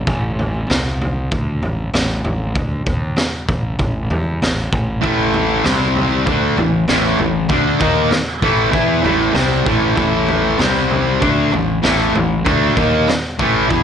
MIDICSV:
0, 0, Header, 1, 6, 480
1, 0, Start_track
1, 0, Key_signature, 0, "minor"
1, 0, Tempo, 619835
1, 55, Time_signature, 4, 2, 24, 8
1, 10711, End_track
2, 0, Start_track
2, 0, Title_t, "Distorted electric guitar"
2, 0, Program_c, 0, 30
2, 3881, Note_on_c, 0, 45, 102
2, 3891, Note_on_c, 0, 52, 107
2, 3893, Note_on_c, 0, 57, 99
2, 4363, Note_off_c, 0, 45, 0
2, 4368, Note_off_c, 0, 52, 0
2, 4369, Note_off_c, 0, 57, 0
2, 4377, Note_on_c, 0, 48, 87
2, 4379, Note_on_c, 0, 55, 87
2, 4383, Note_on_c, 0, 60, 92
2, 4847, Note_off_c, 0, 48, 0
2, 4850, Note_on_c, 0, 50, 80
2, 4851, Note_off_c, 0, 55, 0
2, 4853, Note_off_c, 0, 60, 0
2, 4863, Note_on_c, 0, 57, 92
2, 4864, Note_on_c, 0, 62, 99
2, 5087, Note_off_c, 0, 50, 0
2, 5093, Note_off_c, 0, 57, 0
2, 5094, Note_off_c, 0, 62, 0
2, 5094, Note_on_c, 0, 45, 72
2, 5096, Note_on_c, 0, 52, 80
2, 5288, Note_off_c, 0, 45, 0
2, 5289, Note_off_c, 0, 52, 0
2, 5338, Note_on_c, 0, 45, 103
2, 5338, Note_on_c, 0, 52, 100
2, 5348, Note_on_c, 0, 57, 106
2, 5564, Note_off_c, 0, 45, 0
2, 5568, Note_off_c, 0, 52, 0
2, 5573, Note_on_c, 0, 45, 67
2, 5575, Note_off_c, 0, 57, 0
2, 5578, Note_on_c, 0, 52, 74
2, 5767, Note_off_c, 0, 45, 0
2, 5769, Note_off_c, 0, 52, 0
2, 5807, Note_on_c, 0, 50, 92
2, 5818, Note_on_c, 0, 57, 100
2, 5818, Note_on_c, 0, 62, 102
2, 6038, Note_off_c, 0, 50, 0
2, 6042, Note_on_c, 0, 51, 85
2, 6047, Note_off_c, 0, 57, 0
2, 6050, Note_off_c, 0, 62, 0
2, 6050, Note_on_c, 0, 58, 86
2, 6055, Note_on_c, 0, 63, 91
2, 6281, Note_off_c, 0, 51, 0
2, 6285, Note_off_c, 0, 58, 0
2, 6288, Note_off_c, 0, 63, 0
2, 6521, Note_on_c, 0, 45, 84
2, 6527, Note_on_c, 0, 52, 86
2, 6530, Note_on_c, 0, 57, 94
2, 6740, Note_off_c, 0, 52, 0
2, 6747, Note_off_c, 0, 45, 0
2, 6750, Note_on_c, 0, 52, 82
2, 6758, Note_off_c, 0, 57, 0
2, 6759, Note_on_c, 0, 59, 91
2, 6761, Note_on_c, 0, 64, 106
2, 6985, Note_off_c, 0, 52, 0
2, 6991, Note_off_c, 0, 59, 0
2, 6991, Note_on_c, 0, 45, 92
2, 6994, Note_on_c, 0, 52, 103
2, 6998, Note_off_c, 0, 64, 0
2, 7001, Note_on_c, 0, 57, 108
2, 7228, Note_off_c, 0, 45, 0
2, 7231, Note_on_c, 0, 48, 93
2, 7234, Note_off_c, 0, 52, 0
2, 7237, Note_on_c, 0, 55, 109
2, 7238, Note_off_c, 0, 57, 0
2, 7241, Note_on_c, 0, 60, 104
2, 7468, Note_off_c, 0, 48, 0
2, 7472, Note_on_c, 0, 45, 83
2, 7473, Note_off_c, 0, 55, 0
2, 7476, Note_on_c, 0, 52, 96
2, 7478, Note_off_c, 0, 60, 0
2, 7481, Note_on_c, 0, 57, 97
2, 7705, Note_off_c, 0, 45, 0
2, 7710, Note_off_c, 0, 52, 0
2, 7714, Note_on_c, 0, 45, 99
2, 7715, Note_off_c, 0, 57, 0
2, 7719, Note_on_c, 0, 52, 101
2, 7724, Note_on_c, 0, 57, 107
2, 8194, Note_off_c, 0, 45, 0
2, 8197, Note_on_c, 0, 48, 93
2, 8199, Note_off_c, 0, 52, 0
2, 8201, Note_off_c, 0, 57, 0
2, 8203, Note_on_c, 0, 55, 97
2, 8207, Note_on_c, 0, 60, 100
2, 8674, Note_off_c, 0, 48, 0
2, 8677, Note_on_c, 0, 50, 91
2, 8678, Note_off_c, 0, 55, 0
2, 8681, Note_on_c, 0, 57, 94
2, 8683, Note_off_c, 0, 60, 0
2, 8691, Note_on_c, 0, 62, 102
2, 8918, Note_off_c, 0, 50, 0
2, 8920, Note_off_c, 0, 57, 0
2, 8924, Note_on_c, 0, 45, 76
2, 8925, Note_off_c, 0, 62, 0
2, 8925, Note_on_c, 0, 52, 78
2, 9120, Note_off_c, 0, 45, 0
2, 9121, Note_off_c, 0, 52, 0
2, 9155, Note_on_c, 0, 45, 90
2, 9163, Note_on_c, 0, 52, 103
2, 9166, Note_on_c, 0, 57, 108
2, 9392, Note_off_c, 0, 45, 0
2, 9395, Note_off_c, 0, 52, 0
2, 9401, Note_on_c, 0, 45, 59
2, 9402, Note_off_c, 0, 57, 0
2, 9405, Note_on_c, 0, 52, 70
2, 9599, Note_off_c, 0, 45, 0
2, 9601, Note_off_c, 0, 52, 0
2, 9638, Note_on_c, 0, 50, 88
2, 9645, Note_on_c, 0, 57, 99
2, 9652, Note_on_c, 0, 62, 109
2, 9879, Note_off_c, 0, 50, 0
2, 9882, Note_off_c, 0, 57, 0
2, 9882, Note_on_c, 0, 51, 82
2, 9886, Note_off_c, 0, 62, 0
2, 9887, Note_on_c, 0, 58, 98
2, 9894, Note_on_c, 0, 63, 101
2, 10121, Note_off_c, 0, 51, 0
2, 10124, Note_off_c, 0, 58, 0
2, 10127, Note_off_c, 0, 63, 0
2, 10366, Note_on_c, 0, 45, 83
2, 10373, Note_on_c, 0, 52, 86
2, 10376, Note_on_c, 0, 57, 94
2, 10592, Note_off_c, 0, 52, 0
2, 10599, Note_off_c, 0, 45, 0
2, 10602, Note_on_c, 0, 52, 85
2, 10606, Note_on_c, 0, 59, 88
2, 10609, Note_off_c, 0, 57, 0
2, 10613, Note_on_c, 0, 64, 110
2, 10711, Note_off_c, 0, 52, 0
2, 10711, Note_off_c, 0, 59, 0
2, 10711, Note_off_c, 0, 64, 0
2, 10711, End_track
3, 0, Start_track
3, 0, Title_t, "Fingered electric bass"
3, 0, Program_c, 1, 33
3, 55, Note_on_c, 1, 33, 93
3, 506, Note_off_c, 1, 33, 0
3, 543, Note_on_c, 1, 36, 93
3, 991, Note_off_c, 1, 36, 0
3, 1022, Note_on_c, 1, 38, 93
3, 1245, Note_off_c, 1, 38, 0
3, 1257, Note_on_c, 1, 33, 76
3, 1482, Note_off_c, 1, 33, 0
3, 1500, Note_on_c, 1, 33, 88
3, 1724, Note_off_c, 1, 33, 0
3, 1746, Note_on_c, 1, 33, 87
3, 1967, Note_off_c, 1, 33, 0
3, 1978, Note_on_c, 1, 38, 96
3, 2203, Note_off_c, 1, 38, 0
3, 2220, Note_on_c, 1, 39, 86
3, 2444, Note_off_c, 1, 39, 0
3, 2698, Note_on_c, 1, 33, 91
3, 2923, Note_off_c, 1, 33, 0
3, 2940, Note_on_c, 1, 33, 74
3, 3164, Note_off_c, 1, 33, 0
3, 3182, Note_on_c, 1, 40, 92
3, 3405, Note_off_c, 1, 40, 0
3, 3423, Note_on_c, 1, 33, 77
3, 3645, Note_off_c, 1, 33, 0
3, 3661, Note_on_c, 1, 33, 94
3, 3884, Note_off_c, 1, 33, 0
3, 3898, Note_on_c, 1, 33, 85
3, 4348, Note_off_c, 1, 33, 0
3, 4383, Note_on_c, 1, 36, 96
3, 4830, Note_off_c, 1, 36, 0
3, 4855, Note_on_c, 1, 38, 90
3, 5080, Note_off_c, 1, 38, 0
3, 5097, Note_on_c, 1, 33, 79
3, 5321, Note_off_c, 1, 33, 0
3, 5338, Note_on_c, 1, 33, 86
3, 5561, Note_off_c, 1, 33, 0
3, 5573, Note_on_c, 1, 33, 86
3, 5798, Note_off_c, 1, 33, 0
3, 5809, Note_on_c, 1, 38, 85
3, 6035, Note_off_c, 1, 38, 0
3, 6048, Note_on_c, 1, 39, 88
3, 6275, Note_off_c, 1, 39, 0
3, 6521, Note_on_c, 1, 33, 90
3, 6751, Note_off_c, 1, 33, 0
3, 6763, Note_on_c, 1, 40, 86
3, 6992, Note_off_c, 1, 40, 0
3, 7011, Note_on_c, 1, 33, 92
3, 7234, Note_off_c, 1, 33, 0
3, 7239, Note_on_c, 1, 36, 93
3, 7469, Note_off_c, 1, 36, 0
3, 7480, Note_on_c, 1, 33, 106
3, 7709, Note_off_c, 1, 33, 0
3, 7721, Note_on_c, 1, 33, 95
3, 8176, Note_off_c, 1, 33, 0
3, 8206, Note_on_c, 1, 36, 98
3, 8658, Note_off_c, 1, 36, 0
3, 8689, Note_on_c, 1, 38, 84
3, 8914, Note_off_c, 1, 38, 0
3, 8929, Note_on_c, 1, 33, 77
3, 9154, Note_off_c, 1, 33, 0
3, 9177, Note_on_c, 1, 33, 94
3, 9399, Note_off_c, 1, 33, 0
3, 9418, Note_on_c, 1, 33, 81
3, 9639, Note_off_c, 1, 33, 0
3, 9651, Note_on_c, 1, 38, 92
3, 9876, Note_off_c, 1, 38, 0
3, 9886, Note_on_c, 1, 39, 87
3, 10113, Note_off_c, 1, 39, 0
3, 10372, Note_on_c, 1, 33, 87
3, 10597, Note_off_c, 1, 33, 0
3, 10609, Note_on_c, 1, 40, 91
3, 10711, Note_off_c, 1, 40, 0
3, 10711, End_track
4, 0, Start_track
4, 0, Title_t, "Muted distorted electric guitar strokes"
4, 6288, Note_on_c, 9, 29, 58
4, 6365, Note_off_c, 9, 29, 0
4, 10129, Note_on_c, 9, 29, 54
4, 10206, Note_off_c, 9, 29, 0
4, 10711, End_track
5, 0, Start_track
5, 0, Title_t, "Muted fingered electric bass strokes"
5, 2458, Note_on_c, 9, 29, 43
5, 2535, Note_off_c, 9, 29, 0
5, 6299, Note_on_c, 9, 29, 40
5, 6377, Note_off_c, 9, 29, 0
5, 10141, Note_on_c, 9, 29, 43
5, 10219, Note_off_c, 9, 29, 0
5, 10711, End_track
6, 0, Start_track
6, 0, Title_t, "Drums"
6, 54, Note_on_c, 9, 43, 76
6, 56, Note_on_c, 9, 36, 103
6, 131, Note_off_c, 9, 43, 0
6, 133, Note_off_c, 9, 36, 0
6, 302, Note_on_c, 9, 43, 54
6, 380, Note_off_c, 9, 43, 0
6, 541, Note_on_c, 9, 43, 74
6, 550, Note_on_c, 9, 38, 107
6, 618, Note_off_c, 9, 43, 0
6, 627, Note_off_c, 9, 38, 0
6, 786, Note_on_c, 9, 43, 57
6, 863, Note_off_c, 9, 43, 0
6, 1018, Note_on_c, 9, 43, 73
6, 1021, Note_on_c, 9, 36, 103
6, 1095, Note_off_c, 9, 43, 0
6, 1098, Note_off_c, 9, 36, 0
6, 1258, Note_on_c, 9, 43, 59
6, 1336, Note_off_c, 9, 43, 0
6, 1499, Note_on_c, 9, 43, 80
6, 1509, Note_on_c, 9, 38, 107
6, 1577, Note_off_c, 9, 43, 0
6, 1586, Note_off_c, 9, 38, 0
6, 1739, Note_on_c, 9, 43, 64
6, 1816, Note_off_c, 9, 43, 0
6, 1977, Note_on_c, 9, 43, 90
6, 1979, Note_on_c, 9, 36, 105
6, 2054, Note_off_c, 9, 43, 0
6, 2056, Note_off_c, 9, 36, 0
6, 2217, Note_on_c, 9, 43, 62
6, 2220, Note_on_c, 9, 36, 97
6, 2294, Note_off_c, 9, 43, 0
6, 2297, Note_off_c, 9, 36, 0
6, 2451, Note_on_c, 9, 43, 84
6, 2460, Note_on_c, 9, 38, 114
6, 2529, Note_off_c, 9, 43, 0
6, 2538, Note_off_c, 9, 38, 0
6, 2700, Note_on_c, 9, 36, 100
6, 2700, Note_on_c, 9, 43, 64
6, 2777, Note_off_c, 9, 36, 0
6, 2778, Note_off_c, 9, 43, 0
6, 2934, Note_on_c, 9, 43, 83
6, 2938, Note_on_c, 9, 36, 88
6, 3011, Note_off_c, 9, 43, 0
6, 3016, Note_off_c, 9, 36, 0
6, 3177, Note_on_c, 9, 43, 65
6, 3255, Note_off_c, 9, 43, 0
6, 3424, Note_on_c, 9, 43, 77
6, 3434, Note_on_c, 9, 38, 112
6, 3502, Note_off_c, 9, 43, 0
6, 3511, Note_off_c, 9, 38, 0
6, 3660, Note_on_c, 9, 36, 95
6, 3660, Note_on_c, 9, 43, 62
6, 3737, Note_off_c, 9, 36, 0
6, 3737, Note_off_c, 9, 43, 0
6, 3899, Note_on_c, 9, 43, 78
6, 3900, Note_on_c, 9, 36, 105
6, 3976, Note_off_c, 9, 43, 0
6, 3978, Note_off_c, 9, 36, 0
6, 4135, Note_on_c, 9, 43, 63
6, 4212, Note_off_c, 9, 43, 0
6, 4370, Note_on_c, 9, 43, 81
6, 4379, Note_on_c, 9, 38, 108
6, 4448, Note_off_c, 9, 43, 0
6, 4457, Note_off_c, 9, 38, 0
6, 4614, Note_on_c, 9, 43, 58
6, 4692, Note_off_c, 9, 43, 0
6, 4854, Note_on_c, 9, 43, 78
6, 4855, Note_on_c, 9, 36, 100
6, 4931, Note_off_c, 9, 43, 0
6, 4932, Note_off_c, 9, 36, 0
6, 5092, Note_on_c, 9, 43, 60
6, 5170, Note_off_c, 9, 43, 0
6, 5326, Note_on_c, 9, 43, 78
6, 5335, Note_on_c, 9, 38, 113
6, 5403, Note_off_c, 9, 43, 0
6, 5413, Note_off_c, 9, 38, 0
6, 5563, Note_on_c, 9, 43, 62
6, 5640, Note_off_c, 9, 43, 0
6, 5799, Note_on_c, 9, 43, 81
6, 5806, Note_on_c, 9, 36, 100
6, 5877, Note_off_c, 9, 43, 0
6, 5883, Note_off_c, 9, 36, 0
6, 6037, Note_on_c, 9, 43, 63
6, 6046, Note_on_c, 9, 36, 111
6, 6115, Note_off_c, 9, 43, 0
6, 6123, Note_off_c, 9, 36, 0
6, 6280, Note_on_c, 9, 43, 81
6, 6290, Note_on_c, 9, 38, 105
6, 6358, Note_off_c, 9, 43, 0
6, 6367, Note_off_c, 9, 38, 0
6, 6523, Note_on_c, 9, 43, 61
6, 6524, Note_on_c, 9, 36, 102
6, 6600, Note_off_c, 9, 43, 0
6, 6601, Note_off_c, 9, 36, 0
6, 6763, Note_on_c, 9, 43, 75
6, 6764, Note_on_c, 9, 36, 95
6, 6841, Note_off_c, 9, 36, 0
6, 6841, Note_off_c, 9, 43, 0
6, 7004, Note_on_c, 9, 43, 64
6, 7081, Note_off_c, 9, 43, 0
6, 7238, Note_on_c, 9, 43, 82
6, 7248, Note_on_c, 9, 38, 98
6, 7316, Note_off_c, 9, 43, 0
6, 7325, Note_off_c, 9, 38, 0
6, 7484, Note_on_c, 9, 36, 100
6, 7486, Note_on_c, 9, 43, 69
6, 7562, Note_off_c, 9, 36, 0
6, 7564, Note_off_c, 9, 43, 0
6, 7724, Note_on_c, 9, 36, 105
6, 7725, Note_on_c, 9, 43, 91
6, 7801, Note_off_c, 9, 36, 0
6, 7802, Note_off_c, 9, 43, 0
6, 7962, Note_on_c, 9, 43, 63
6, 8040, Note_off_c, 9, 43, 0
6, 8201, Note_on_c, 9, 43, 78
6, 8210, Note_on_c, 9, 38, 107
6, 8278, Note_off_c, 9, 43, 0
6, 8288, Note_off_c, 9, 38, 0
6, 8447, Note_on_c, 9, 43, 61
6, 8524, Note_off_c, 9, 43, 0
6, 8688, Note_on_c, 9, 43, 77
6, 8689, Note_on_c, 9, 36, 102
6, 8766, Note_off_c, 9, 43, 0
6, 8767, Note_off_c, 9, 36, 0
6, 8932, Note_on_c, 9, 43, 64
6, 9009, Note_off_c, 9, 43, 0
6, 9164, Note_on_c, 9, 43, 75
6, 9173, Note_on_c, 9, 38, 112
6, 9242, Note_off_c, 9, 43, 0
6, 9251, Note_off_c, 9, 38, 0
6, 9411, Note_on_c, 9, 43, 64
6, 9489, Note_off_c, 9, 43, 0
6, 9651, Note_on_c, 9, 36, 104
6, 9652, Note_on_c, 9, 43, 77
6, 9728, Note_off_c, 9, 36, 0
6, 9729, Note_off_c, 9, 43, 0
6, 9886, Note_on_c, 9, 43, 58
6, 9889, Note_on_c, 9, 36, 94
6, 9963, Note_off_c, 9, 43, 0
6, 9966, Note_off_c, 9, 36, 0
6, 10130, Note_on_c, 9, 43, 77
6, 10139, Note_on_c, 9, 38, 111
6, 10207, Note_off_c, 9, 43, 0
6, 10216, Note_off_c, 9, 38, 0
6, 10369, Note_on_c, 9, 43, 57
6, 10372, Note_on_c, 9, 36, 102
6, 10446, Note_off_c, 9, 43, 0
6, 10449, Note_off_c, 9, 36, 0
6, 10611, Note_on_c, 9, 43, 81
6, 10614, Note_on_c, 9, 36, 101
6, 10689, Note_off_c, 9, 43, 0
6, 10691, Note_off_c, 9, 36, 0
6, 10711, End_track
0, 0, End_of_file